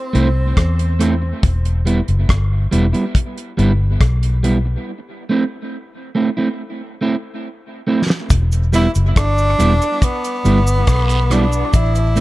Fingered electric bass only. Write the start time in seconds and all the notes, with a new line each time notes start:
0.15 C2
0.57 E2
1.44 E1
2.09 F#1
2.29 G1
2.73 E1
3.59 G1
4.01 B1
8.31 E1
8.96 F#1
9.17 G1
9.60 E1
10.45 G1
10.88 B1
11.74 A1